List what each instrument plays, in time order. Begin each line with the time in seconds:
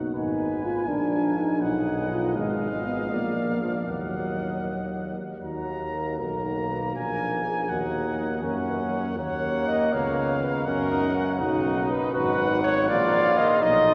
Already playing: euphonium D#4, french horn F#4
0.14 bass trombone G#1, euphonium D#4, flugelhorn B4, trumpet G#5
0.65 euphonium F4
0.87 bass trombone A#1, euphonium D4, french horn F4, flugelhorn A#4
1.38 euphonium D#4
1.61 bass trombone B1, euphonium D#4, french horn B4, flugelhorn D#5, trumpet F#5
2.11 euphonium F4
2.34 bass trombone G#1, euphonium G#3, trumpet F5
2.85 euphonium B3
3.10 bass trombone A#1, euphonium A#3, french horn A#4, flugelhorn D5
3.62 euphonium F3
3.87 bass trombone D#2, euphonium F#3, flugelhorn D#5, trumpet F#5
5.43 bass trombone D#2, euphonium D#4, french horn F#4, trumpet A#5
5.95 french horn A#4
6.19 bass trombone B1, flugelhorn A#3, euphonium D#4, french horn A#4, trumpet A#5
6.70 french horn B4
6.94 bass trombone A#1, euphonium D4, french horn A#4, trumpet G#5
7.32 euphonium B3
7.44 french horn G#4
7.69 bass trombone D#2, euphonium A#3, flugelhorn D#4, french horn F#4, trumpet F#5
8.42 bass trombone F#2, euphonium A#3, flugelhorn C#4, french horn A#4, trumpet F#5
8.69 french horn B4
8.94 french horn C#5
9.17 bass trombone D#2, flugelhorn A#3, euphonium A#3, french horn C#5, trumpet F#5
9.67 french horn D#5
9.92 bass trombone C#2, euphonium B3, french horn C#5, trumpet F5
10.43 french horn B4
10.65 bass trombone F#2, flugelhorn C#4, euphonium C#4, french horn A#4, trumpet F#5
10.90 flugelhorn D#4
11.15 flugelhorn C#4
11.39 bass trombone B1, flugelhorn D#4, euphonium D#4, french horn F#4, trumpet F#5
11.90 french horn B4
12.13 bass trombone G#1, euphonium D#4, flugelhorn F#4, french horn B4, trumpet F#5
12.64 french horn C#5
12.88 bass trombone A#1, euphonium A#3, flugelhorn F4, french horn D5, trumpet F5
13.37 french horn D#5
13.62 bass trombone B1, flugelhorn D#4, euphonium D#4, trumpet D#5, french horn D#5